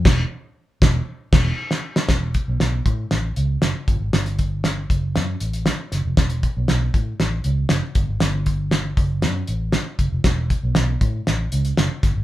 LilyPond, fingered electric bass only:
\new Staff \with { instrumentName = "Fingered electric bass" } { \clef bass \time 4/4 \key a \mixolydian \tempo 4 = 118 e,,8 r4 e,,8 r8 e,,8 r4 | e,,8. b,,16 b,,8 a,8 a,,8 cis,8 fis,,16 r16 g,,16 gis,,16 | g,,4. fis,,8 fis,8 a,,8. r16 fis,,16 f,,16 | e,,8. b,,16 b,,8 a,8 a,,8 cis,8 fis,,16 r16 g,,16 gis,,16 |
g,,4. fis,,8 fis,8 a,,8. r16 fis,,16 f,,16 | e,,8. b,,16 b,,8 a,8 a,,8 cis,8 fis,,16 r16 g,,16 gis,,16 | }